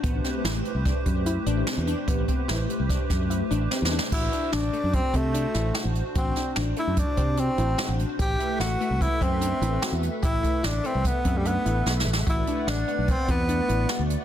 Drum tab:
CC |------------------------------|------------------------------|x-----------------------------|------------------------------|
HH |x--x--x--x--x--x--x--x--x--x--|x--x--x--x--x--x--x--x--------|---x--x--x--x--x--x--x--x--x--|x--x--x--x--x--x--x--x--x--x--|
SD |---o--o-----o-----------o-----|------o-----o--o--------o-o-o-|------o--------------o--o-----|---o--o-----------------o-----|
BD |o-----------o--o--------------|o--o--------o--o--------------|o-----------o--o--------------|o-----------o--o--------------|

CC |------------------------------|------------------------------|------------------------------|
HH |x--x--x--x--x--x--x--x--x--x--|x--x--x--x--x--x--x--x--------|x--x--x--x--x--x--x--x--x--x--|
SD |------o-----------------o-----|------o-----------------o-o-o-|------o-----------------o-----|
BD |o-----------o--o--------------|o--o--------o--o--------------|o-----------o--o--------------|